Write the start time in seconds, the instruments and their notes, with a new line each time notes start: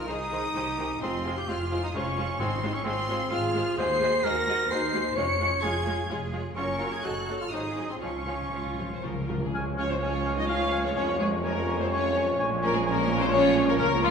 0.07 double bass section C2, viola section D#3 D#4, french horn section D#4, cor anglais D#4, cello section G#4, violin section G#4 C5 D#6
0.31 viola section D#3 D#4, violin section G#4 C5
0.54 double bass section C2, viola section D#3 D#4, cello section G4, violin section G#4 C5
0.78 viola section D#3 D#4, violin section G#4 C5
1.01 double bass section F1, viola section G#3 F4, french horn section C4, cor anglais C4, cello section F4, violin section G#4 C5 C6
1.25 viola section G#3 F4, violin section G#4 C5
1.36 french horn section G4, cor anglais G4, violin section G6
1.48 double bass section F1, viola section G#3 F4, cor anglais F4, french horn section F4, violin section G#4 C5 F6
1.72 viola section G#3 F4, violin section G#4 C5
1.82 french horn section D#4, cor anglais D#4, violin section D#6
1.94 double bass section F1, viola section G#3 F4, cor anglais C#4, french horn section C#4, violin section G#4 C5 C#6
2.18 viola section G#3 F4, violin section G#4 C5
2.39 double bass section G#1, timpani G#2, viola section G#3 F4, cor anglais C4, french horn section C4, cello section D#4, violin section G#4 C5 C6
2.63 viola section G#3 F4, violin section G#4 C5
2.73 cor anglais C#4, french horn section C#4, violin section C#6
2.84 double bass section G#1, viola section G#3 F4, cor anglais C4, french horn section C4, cello section F4, violin section G#4 C5 C6
3.08 viola section G#3 F4, violin section G#4 C5
3.30 double bass section G#1, viola section G#3 F4, cor anglais F4, french horn section F4, cello section G#4, violin section G#4 C5 F6
3.55 viola section G#3 F4, violin section G#4 C5
3.78 double bass section D#2, viola section G#3 F#4, violin section G#4 D#5 C7, cor anglais C5, french horn section C5
4.01 viola section G#3 F#4, violin section G#4 D#5
4.23 double bass section D#2, viola section G#3 F#4, cello section F#4, violin section G#4 D#5 A#6, french horn section A#4, cor anglais A#4
4.48 viola section G#3 F#4, violin section G#4 D#5
4.69 double bass section D#2, viola section G#3 F#4, cello section D#4, violin section G#4 D#5 C7, french horn section C5, cor anglais C5
4.93 viola section G#3 F#4, violin section G#4 D#5
5.16 double bass section F1, viola section G#3 F4, cello section C#4, violin section G#4 C#5 C#7, french horn section C#5, cor anglais C#5
5.39 viola section G#3 F4, violin section G#4 C#5
5.62 double bass section F1, viola section G#3 F4, cello section F4, french horn section G#4, cor anglais G#4, violin section G#4 C#5 G#6
5.86 viola section G#3 F4, violin section G#4 C#5
6.09 double bass section F1, viola section G#3 F4, cello section G#4, violin section G#4 C#5
6.33 viola section G#3 F4, violin section G#4 C#5
6.56 double bass section F#1, viola section F#3 F4, cor anglais C#4, french horn section C#4, cello section A#4, violin section A#4 C#5 C#6
6.79 viola section F#3 F4, violin section A#4 C#5
6.91 french horn section G#4, cor anglais G#4, violin section G#6
7.02 double bass section F#1, viola section F#3 D#4, french horn section F#4, cor anglais F#4, cello section A4, violin section A4 C#5 F#6
7.27 viola section F#3 D#4, violin section A4 C#5
7.39 french horn section F4, cor anglais F4, violin section F6
7.51 double bass section G#1, viola section F#3 D#4, french horn section D#4, cor anglais D#4, cello section G#4, violin section G#4 C5 D#6
7.76 viola section F#3 D#4, violin section G#4 C5
7.88 french horn section C4, cor anglais C4, violin section C6
8.00 double bass section C#2, timpani C#3, viola section F3 F4, french horn section C#4, cor anglais C#4, cello section F4, violin section G#4 C#5 C#6
8.18 timpani C#3
8.25 timpani C#3, viola section F3 F4, violin section G#4 C#5
8.42 timpani C#3
8.49 double bass section C#2, timpani C#3, viola section F3 F4
8.53 timpani C#3, violin section F4
8.66 timpani C#3
8.74 timpani C#3
8.78 timpani C#3, viola section F3 F4
8.90 timpani C#3, violin section C5
8.98 timpani C#3
9.03 double bass section C#2, timpani C#3, viola section F3 F4, violin section A#4
9.13 timpani C#3
9.21 timpani C#3
9.28 timpani C#3, viola section F3 F4
9.38 timpani C#3
9.44 timpani C#3, violin section G#4
9.53 double bass section C#2, tuba C#2, trombone section F3 G#3, viola section F3 G#3, french horn section C#4 F4, trumpet section C#5, cor anglais G#5, flute section F6
9.77 cello section C#4, violin section F4 C#5, cor anglais G#5, flute section F6
9.89 cello section C4, violin section D#4 C5
10.01 cello section C#4, violin section F4 C#5, cor anglais G#5, flute section F6
10.25 cor anglais G#5, flute section F6
10.36 cello section D#4, violin section F#4 D#5
10.48 cello section F4, violin section G#4 F5, cor anglais G#5, flute section F6
10.71 cor anglais G#5, flute section F6
10.84 cello section C#4, violin section F4 C#5
10.95 tuba F1, double bass section F2, cello section C#4, violin section F4 C#5, cor anglais G#5, flute section C#6
11.19 cello section G#3, violin section C4 G#4, cor anglais G#5, flute section C#6
11.42 cello section A#3, violin section C#4 A#4, cor anglais G#5, flute section C#6
11.68 cor anglais G#5, flute section C#6
11.80 cello section C4, violin section D#4 C5
11.91 cello section C#4, violin section F4 C#5, cor anglais G#5, flute section C#6
12.16 cor anglais G#5, flute section C#6
12.38 double bass section A#1, tuba A#1, viola section F3 G#3, trombone section F3 G#3, french horn section C#4 F4, trumpet section C#5, cor anglais G#5, flute section C#6
12.62 cello section A#3, violin section C#4 A#4, cor anglais G#5, flute section C#6
12.73 cello section G#3, violin section C4 G#4
12.85 cello section A#3, violin section C#4 A#4, cor anglais G#5, flute section C#6
13.09 cor anglais G#5, flute section C#6
13.21 cello section C4, violin section D#4 C5
13.31 cello section C#4, violin section F4 C#5, cor anglais G#5, flute section C#6
13.55 cor anglais G#5, flute section C#6
13.67 cello section A#3, violin section C#4 A#4
13.77 double bass section C#2, tuba C#2, trombone section C#3 A#3, viola section A#3, cello section A#3, violin section C#4 A#4, cor anglais A#4, flute section C#6
14.02 cello section F3, violin section G#3 F4, cor anglais A#4, flute section C#6